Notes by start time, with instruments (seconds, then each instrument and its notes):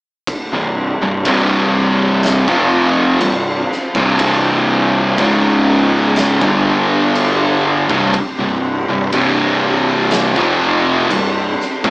0.27 string machine C4 G4 C5, kick, crash
0.52 fingered electric bass C1, distorted electric guitar C2 G2
1.00 fingered electric bass C1, distorted electric guitar C2 G2
1.25 fingered electric bass C1, distorted electric guitar C2 G2 C3, kick, crash
2.23 string machine F4, snare, crash
2.48 fingered electric bass F1, distorted electric guitar F2 C3 F3, kick
3.20 fingered electric bass C1, distorted electric guitar C2 G2, crash
3.72 snare
3.95 fingered electric bass C1, distorted electric guitar C2 G2 C3, kick
4.19 kick, crash
5.18 fingered electric bass C#1, distorted electric guitar C#2 G#2 C#3, string machine C#4 G#4 D#5, kick, crash
6.16 snare, crash
6.41 fingered electric bass G1, distorted electric guitar G2 D3 G3, string machine G3, kick
6.45 string machine D4 G4
7.15 crash
7.90 fingered electric bass C1, distorted electric guitar C2 G2, string machine C4, kick
7.94 string machine C5
8.13 kick, crash
8.38 fingered electric bass C1, distorted electric guitar C2 G2
8.88 fingered electric bass C1, distorted electric guitar C2 G2
9.12 fingered electric bass C1, distorted electric guitar C2 G2 C3, kick, crash
10.11 snare, crash
10.35 fingered electric bass F1, distorted electric guitar F2 C3 F3, kick
11.10 fingered electric bass C1, distorted electric guitar C2 G2, crash
11.61 snare
11.84 fingered electric bass C1, distorted electric guitar C2 G2 C3, kick